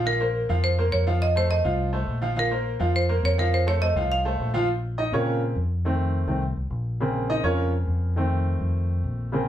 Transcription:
Already playing: A#1
0.05 F3 F4 A#4 F5
0.20 A#3 A#4 C5
0.49 F2 F3 F4 F5
0.64 C5
0.78 A#3 A#4 C5
0.92 F2 C#5
1.07 F3 F4 F5
1.22 D#5
1.35 A3 A4 C5
1.50 A3 A4 C5 D#5
1.64 C2 F3 F4 F5
1.93 A3 A4 C5
2.07 A#1
2.21 F3 F4 F5
2.36 F3 F4 A#4 F5
2.51 A#3 A#4 C5
2.79 F2 F3 F4 F5
2.96 C5
3.09 A#3 A#4 C5
3.23 F2 C#5
3.38 F3 F4 A#4 F5
3.54 C5
3.66 A3 A4 C5 C#5
3.81 A3 A4 C5 D#5
3.95 C2 F3 F4 F5
4.12 F5
4.25 A3 A4 C5
4.39 A#1
4.54 F3 F4 F5
4.98 D#4 D#5
5.12 A#2 C#3 A#3 C4 C#4 F4 A#4 C#5
5.56 F2
5.85 D#3 A3 C4
6.27 C2 D#3 A3 C4
6.57 C2
6.70 A#1
7.00 C#3 A#3 C4
7.30 D#4 D#5
7.43 F2 C#4 F4 A#4 C#5
7.87 F2
8.16 D#3 A3 C4
8.60 F2
9.04 A#1
9.32 C#3 A#3 C4

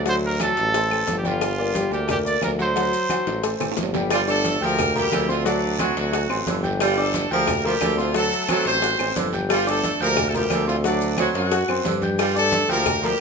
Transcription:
Already playing: D2
0.06 F#3 F#4 C5 F#5, cowbell, low agogo, long guiro, maracas
0.24 A#4, high conga
0.40 F#3 F#4 A4 F#5, cowbell, high conga, low timbale, low agogo, short guiro, claves, maracas
0.57 A1, cowbell, high conga, low agogo, short guiro, maracas
0.74 A3 A4 C5, cowbell, high conga, low agogo, long guiro, maracas
0.91 A3 A4 C5, high conga, low agogo, claves
1.07 G1, cowbell, high conga, low timbale, short guiro, maracas
1.18 G4
1.24 G3 F4 G4 G5, high conga, low agogo, short guiro, maracas
1.41 cowbell, high conga, low agogo, long guiro, claves, maracas
1.58 A#3 A#4 D5, high conga, low agogo
1.74 G3 G4 G5, cowbell, high conga, low timbale, short guiro, maracas
1.91 D2 A#3 G4 A#4 D5, high conga, low agogo, short guiro, maracas
2.08 A#3 G4 A#4 D5, cowbell, high conga, low conga, low agogo, long guiro, claves, maracas
2.25 A#3 A#4 D5, high conga, maracas
2.41 D2 A#4, cowbell, high conga, low timbale, low agogo, short guiro, claves, maracas
2.59 F#3 F#4 C5 F#5, high conga, short guiro, maracas
2.76 F#3 F#4 F#5, cowbell, high conga, low agogo, long guiro, maracas
2.93 high conga, maracas
3.09 F#3 F#4 F#5, cowbell, high conga, low timbale, low agogo, short guiro, claves, maracas
3.26 A1, cowbell, high bongo, high conga, low agogo, short guiro, maracas
3.43 A3 A4 C5, cowbell, high conga, low agogo, long guiro, maracas
3.60 A1 A3 A4 C5, low bongo, high conga, high timbale, low agogo, claves, maracas
3.72 high timbale
3.77 G1, cowbell, low bongo, high conga, short guiro, maracas
3.83 low timbale
3.94 G3 G4 G5, low bongo, high conga, low timbale, low agogo, short guiro, maracas
4.10 F3 G3 F4, cowbell, high conga, low agogo, long guiro, claves, maracas
4.27 A3 D4 A4 D5 D6, high conga, low agogo, maracas
4.45 cowbell, high conga, low timbale, short guiro, maracas
4.61 D2 F3 A#3 G4 A#4 G5 G6, high conga, low agogo, short guiro, maracas
4.78 cowbell, high conga, low conga, low agogo, long guiro, claves, maracas
4.95 F3 G3 A#3 G4 A#4 A#5, high conga, low conga
5.12 D2 D3, cowbell, high conga, low timbale, low agogo, short guiro, claves, maracas
5.29 F3 C4 F4 C5 C6, high conga, short guiro, maracas
5.45 F#3 D4 F#4 D5 F#5, cowbell, high conga, low agogo, long guiro, maracas
5.63 high conga
5.79 F#3 C4 F#4 C5 C6, cowbell, high conga, low timbale, low agogo, short guiro, claves, maracas
5.96 D2 F#3 F#4, cowbell, high conga, low agogo, short guiro, maracas
6.12 F#4 F#5 F#6, cowbell, low agogo, long guiro, maracas
6.29 A1 C4 C5 C6, high conga, low agogo, claves
6.46 G1 D3, cowbell, high conga, low timbale, short guiro, maracas
6.63 G4 G5 G6, high conga, low agogo, short guiro, maracas
6.80 F3 G3 F4, cowbell, high conga, low agogo, long guiro, claves, maracas
6.97 A3 D4 A4 D5 D6, high conga, low agogo
7.14 cowbell, high conga, low timbale, short guiro, maracas
7.30 D2 F3 A#3 G4 A#4 G5 G6, high conga, low agogo, short guiro, maracas
7.47 cowbell, high conga, low conga, low agogo, long guiro, claves, maracas
7.64 F3 G3 A#3 G4 A#4 A#5, high conga
7.81 D2 D3, cowbell, high conga, low timbale, low agogo, short guiro, claves, maracas
7.97 F3 C4 F4 C5 C6, high conga, short guiro, maracas
8.14 F#3 A3 F#4 A4 F#5, cowbell, high conga, low agogo, long guiro, maracas
8.32 high conga, maracas
8.48 F#3 A3 C4 A4 C5 C6, cowbell, high conga, low timbale, low agogo, short guiro, claves, maracas
8.65 A1 C4 C5, cowbell, high conga, low agogo, short guiro, maracas
8.82 F#4 F#5 F#6, cowbell, high conga, low agogo, long guiro, maracas
8.99 A1 C4 C5 C6, high conga, low agogo, claves, maracas
9.16 G1 D3, cowbell, high conga, low timbale, short guiro, maracas
9.33 G4 G5 G6, high conga, low agogo, short guiro, maracas
9.50 F3 G3 F4, cowbell, high conga, low agogo, long guiro, claves, maracas
9.67 A3 D4 A4 D5 D6, high conga, low agogo, maracas
9.84 cowbell, high conga, low timbale, short guiro, maracas
10.00 D2 F3 A#3 G4 A#4 G5 G6, high conga, low agogo, short guiro, maracas
10.17 cowbell, high conga, low conga, low agogo, long guiro, claves, maracas
10.28 A3 A4
10.34 F3 G3 A#3 G4 A#4 A#5, high conga, low conga, maracas
10.50 D2 D3, cowbell, high conga, low timbale, low agogo, short guiro, claves, maracas
10.67 F3 C4 F4 C5 C6, high conga, short guiro, maracas
10.84 F#3 D4 F#4 D5 F#5, cowbell, low agogo, long guiro, maracas
11.01 high conga, maracas
11.17 F#3 C4 F#4 C5 C6, cowbell, high conga, low timbale, low agogo, short guiro, claves, maracas
11.34 F#2 F#3 F#4, cowbell, high conga, low agogo, short guiro, maracas
11.51 F#4 F#5 F#6, cowbell, high conga, low agogo, long guiro, maracas
11.68 F#2 C4 C5 C6, high conga, low agogo, claves
11.85 G2 D3, cowbell, high conga, low timbale, short guiro, maracas
12.02 G4 G5 G6, high conga, low agogo, short guiro, maracas
12.18 F3 G3 F4, cowbell, high conga, low agogo, long guiro, claves, maracas
12.35 A3 D4 A4 D5 D6, high conga, low agogo, maracas
12.52 cowbell, high conga, low timbale, short guiro, maracas
12.69 D2 F3 A#3 G4 A#4 G5 G6, high conga, low agogo, short guiro, maracas
12.86 cowbell, high conga, low conga, low agogo, long guiro, claves, maracas
13.03 F3 G3 A#3 G4 A#4 A#5, high conga

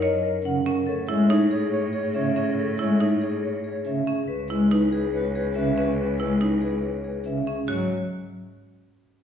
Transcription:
Already playing: F#2
0.02 A#4 C#5 D#5
0.23 A#4
0.44 C#3 A#4 F#5
0.66 C#4 A#4
0.87 A2 A4 C#5
1.08 G#3 E4 C#5 E5
1.29 D#4 A4 C#5
1.51 G#4 C#5
1.73 C#5
1.93 G#4 C#5
2.15 C#3 C#5 E5
2.36 C#4 G#4 C#5
2.58 A4 C#5
2.79 G#3 E4 C#5 E5
3.00 D#4 A4 C#5
3.21 G#4 C#5
3.43 C#5
3.64 G#4 C#5
3.86 C#3 C#5 E5
4.07 C#4 G#4
4.28 C#2 B4
4.50 G#3 E4 B4
4.71 D#4 B4
4.92 G#4 B4
5.13 B4 C#5
5.35 G#4 B4
5.55 C#3 B4 E5
5.77 C#4 G#4 B4
5.98 B4
6.20 G#3 E4 B4
6.41 D#4 B4
6.61 G#4 B4
6.84 B4 C#5
7.04 G#4 B4
7.26 C#3 B4 E5
7.46 C#4 G#4
7.68 G#2 F#3 F#4 C#5

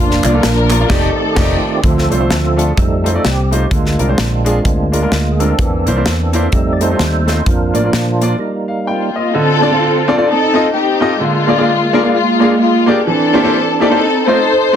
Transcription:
Already playing: F1 F3 A#3 D4 F4 A#4
0.11 snare
0.24 C2 A#3 D4 F4 D5, clap, closed hi-hat
0.33 A#3 D4 F4 A4
0.41 A#1 D4 F4 A#4, snare, closed hi-hat
0.70 A#3 D4 F4 D5, clap, closed hi-hat
0.79 A#3 D4 F4 D5
0.89 F1 D#3 A3 C4 D#4 G4 A4 D5, kick, snare, crash
1.35 F1 A3 C4 D#4 F4 G4 D5, kick, snare, crash
1.80 D2 D3 F3 A3 G#4, kick, closed hi-hat
1.84 C4 F4 A4
1.98 snare
2.10 C2 A3 D4 F4 C5, closed hi-hat
2.19 A3 D4 F4 C5
2.31 D2, snare, closed hi-hat
2.57 A3 D4 F4 A4, closed hi-hat
2.71 G#4
2.77 F2 G3 A3 C4 D#4 A4, kick, closed hi-hat
3.04 A3 D#4 F4 C5, closed hi-hat
3.14 A3 D#4 F4 D5
3.25 C2 G4, snare, closed hi-hat
3.51 A3 D#4 F4 G4 C5, closed hi-hat
3.71 D2 D3 G#3 A#3 F4, kick, closed hi-hat
3.86 snare
3.98 C2 G#3 C4 D4 F4 A#4, closed hi-hat
4.08 G#3 D4 F4 C5
4.18 A#1, snare, closed hi-hat
4.45 G#3 D4 F4 G#4, closed hi-hat
4.64 D2 G#3 A#3 C4 D4 F4, kick, closed hi-hat
4.92 G#3 D4 F4 A#4, closed hi-hat
5.01 G#3 D4 F4 A#4
5.11 D2 F4, snare, closed hi-hat
5.31 G#4
5.39 G#3 C4 D4 F4 A4 A#4, closed hi-hat
5.58 E2 E3 A#3 D4, kick, closed hi-hat
5.86 C2 A#3 D4 E4 C5, closed hi-hat
5.96 A#3 D4 E4 C5
6.06 E2, snare, closed hi-hat
6.33 A#3 D4 E4 C5, closed hi-hat
6.52 F2 G3 A3 C4 D#4 A4, kick, closed hi-hat
6.73 D5
6.80 A3 D#4 F4 A4 C5, closed hi-hat
6.90 A3 D#4 F4 C5
6.99 D#2, snare, closed hi-hat
7.27 A3 D#4 F4 C5, snare, closed hi-hat
7.46 F2 F3 A#3 D4 F4 A#4, kick, closed hi-hat
7.74 A2 A#3 D4 F4 D5, closed hi-hat
7.84 A#3 D4 F4 D5
7.93 A#2, snare, closed hi-hat
8.21 A#3 D4 F4 D5, closed hi-hat
8.39 G3 A#3 D#4
8.68 F5
8.87 A#3 C4 F4 G5
9.16 D#5
9.34 D3 C4 F4 A4
9.61 C4 D4 F4 A4 D5
9.71 C4 D4 F4 A4 F5
10.08 C4 D4 F4 A4 D5
10.17 C4 D4 F4 A4 D5
10.28 C4 D#4 A4
10.54 C4 D#4 F4 A4 D#5
10.74 C4 D#4 G4
11.00 C4 D#4 F4 A4 D#5
11.20 D3 G#3 A#3 F4
11.47 A#3 D4 F4 G#4 D5
11.57 A#3 D4 F4 G#4 D5
11.93 A#3 D4 F4 G#4 A#4
12.03 A#3 D4 F4 G#4 F5
12.14 G#3 A#3 F4
12.40 A#3 D4 F4 G#4 F5
12.60 F4
12.86 A#3 D4 F4 G4 G#4 D5
13.07 E3 C4 D4 A4
13.33 A#3 D4 E4 G4 C5
13.43 A#3 D4 E4 G4 C5
13.80 A#3 C4 D4 D#4 E4 G4 A4 D5
13.90 A#3 D4 E4 G4 C5
14.27 A3 C4 D#4 F4 A4 C5
14.73 A3

